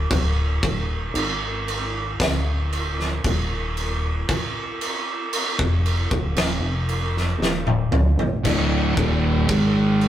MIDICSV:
0, 0, Header, 1, 4, 480
1, 0, Start_track
1, 0, Tempo, 1041667
1, 44, Time_signature, 4, 2, 24, 8
1, 4645, End_track
2, 0, Start_track
2, 0, Title_t, "Distorted electric guitar"
2, 0, Program_c, 0, 30
2, 3890, Note_on_c, 0, 38, 85
2, 3893, Note_on_c, 0, 45, 93
2, 3898, Note_on_c, 0, 50, 115
2, 4122, Note_off_c, 0, 38, 0
2, 4124, Note_off_c, 0, 45, 0
2, 4126, Note_off_c, 0, 50, 0
2, 4126, Note_on_c, 0, 39, 89
2, 4132, Note_on_c, 0, 46, 96
2, 4134, Note_on_c, 0, 51, 103
2, 4360, Note_off_c, 0, 39, 0
2, 4362, Note_off_c, 0, 46, 0
2, 4364, Note_off_c, 0, 51, 0
2, 4369, Note_on_c, 0, 44, 84
2, 4370, Note_on_c, 0, 51, 94
2, 4373, Note_on_c, 0, 56, 91
2, 4645, Note_off_c, 0, 44, 0
2, 4645, Note_off_c, 0, 51, 0
2, 4645, Note_off_c, 0, 56, 0
2, 4645, End_track
3, 0, Start_track
3, 0, Title_t, "Analog synth bass"
3, 0, Program_c, 1, 38
3, 48, Note_on_c, 1, 26, 93
3, 270, Note_off_c, 1, 26, 0
3, 289, Note_on_c, 1, 27, 92
3, 512, Note_off_c, 1, 27, 0
3, 525, Note_on_c, 1, 32, 95
3, 989, Note_off_c, 1, 32, 0
3, 1011, Note_on_c, 1, 26, 98
3, 1473, Note_off_c, 1, 26, 0
3, 1494, Note_on_c, 1, 27, 98
3, 1954, Note_off_c, 1, 27, 0
3, 2573, Note_on_c, 1, 29, 87
3, 2795, Note_off_c, 1, 29, 0
3, 2815, Note_on_c, 1, 26, 94
3, 2925, Note_off_c, 1, 26, 0
3, 2929, Note_on_c, 1, 27, 93
3, 3040, Note_off_c, 1, 27, 0
3, 3043, Note_on_c, 1, 29, 99
3, 3388, Note_off_c, 1, 29, 0
3, 3403, Note_on_c, 1, 27, 94
3, 3630, Note_off_c, 1, 27, 0
3, 3646, Note_on_c, 1, 26, 102
3, 3760, Note_off_c, 1, 26, 0
3, 3767, Note_on_c, 1, 33, 92
3, 3880, Note_off_c, 1, 33, 0
3, 3895, Note_on_c, 1, 26, 93
3, 4115, Note_off_c, 1, 26, 0
3, 4134, Note_on_c, 1, 27, 103
3, 4354, Note_off_c, 1, 27, 0
3, 4372, Note_on_c, 1, 32, 96
3, 4645, Note_off_c, 1, 32, 0
3, 4645, End_track
4, 0, Start_track
4, 0, Title_t, "Drums"
4, 49, Note_on_c, 9, 36, 98
4, 52, Note_on_c, 9, 49, 72
4, 96, Note_off_c, 9, 36, 0
4, 98, Note_off_c, 9, 49, 0
4, 290, Note_on_c, 9, 36, 107
4, 292, Note_on_c, 9, 49, 58
4, 336, Note_off_c, 9, 36, 0
4, 338, Note_off_c, 9, 49, 0
4, 530, Note_on_c, 9, 49, 73
4, 577, Note_off_c, 9, 49, 0
4, 774, Note_on_c, 9, 49, 59
4, 821, Note_off_c, 9, 49, 0
4, 1013, Note_on_c, 9, 36, 105
4, 1013, Note_on_c, 9, 49, 75
4, 1020, Note_on_c, 9, 38, 115
4, 1059, Note_off_c, 9, 36, 0
4, 1059, Note_off_c, 9, 49, 0
4, 1067, Note_off_c, 9, 38, 0
4, 1256, Note_on_c, 9, 49, 58
4, 1302, Note_off_c, 9, 49, 0
4, 1381, Note_on_c, 9, 38, 34
4, 1428, Note_off_c, 9, 38, 0
4, 1495, Note_on_c, 9, 36, 105
4, 1497, Note_on_c, 9, 49, 70
4, 1541, Note_off_c, 9, 36, 0
4, 1543, Note_off_c, 9, 49, 0
4, 1737, Note_on_c, 9, 49, 54
4, 1783, Note_off_c, 9, 49, 0
4, 1976, Note_on_c, 9, 36, 93
4, 1977, Note_on_c, 9, 49, 70
4, 2022, Note_off_c, 9, 36, 0
4, 2023, Note_off_c, 9, 49, 0
4, 2217, Note_on_c, 9, 49, 62
4, 2263, Note_off_c, 9, 49, 0
4, 2455, Note_on_c, 9, 49, 81
4, 2501, Note_off_c, 9, 49, 0
4, 2577, Note_on_c, 9, 36, 104
4, 2623, Note_off_c, 9, 36, 0
4, 2698, Note_on_c, 9, 49, 60
4, 2745, Note_off_c, 9, 49, 0
4, 2816, Note_on_c, 9, 36, 111
4, 2862, Note_off_c, 9, 36, 0
4, 2933, Note_on_c, 9, 49, 81
4, 2940, Note_on_c, 9, 38, 108
4, 2979, Note_off_c, 9, 49, 0
4, 2986, Note_off_c, 9, 38, 0
4, 3174, Note_on_c, 9, 49, 60
4, 3220, Note_off_c, 9, 49, 0
4, 3305, Note_on_c, 9, 38, 32
4, 3351, Note_off_c, 9, 38, 0
4, 3421, Note_on_c, 9, 38, 61
4, 3467, Note_off_c, 9, 38, 0
4, 3533, Note_on_c, 9, 48, 68
4, 3579, Note_off_c, 9, 48, 0
4, 3650, Note_on_c, 9, 45, 93
4, 3696, Note_off_c, 9, 45, 0
4, 3774, Note_on_c, 9, 43, 89
4, 3820, Note_off_c, 9, 43, 0
4, 3893, Note_on_c, 9, 49, 66
4, 3893, Note_on_c, 9, 57, 83
4, 3895, Note_on_c, 9, 36, 93
4, 3939, Note_off_c, 9, 49, 0
4, 3939, Note_off_c, 9, 57, 0
4, 3941, Note_off_c, 9, 36, 0
4, 4133, Note_on_c, 9, 49, 59
4, 4134, Note_on_c, 9, 36, 114
4, 4180, Note_off_c, 9, 36, 0
4, 4180, Note_off_c, 9, 49, 0
4, 4371, Note_on_c, 9, 49, 70
4, 4373, Note_on_c, 9, 36, 108
4, 4418, Note_off_c, 9, 49, 0
4, 4419, Note_off_c, 9, 36, 0
4, 4614, Note_on_c, 9, 49, 55
4, 4645, Note_off_c, 9, 49, 0
4, 4645, End_track
0, 0, End_of_file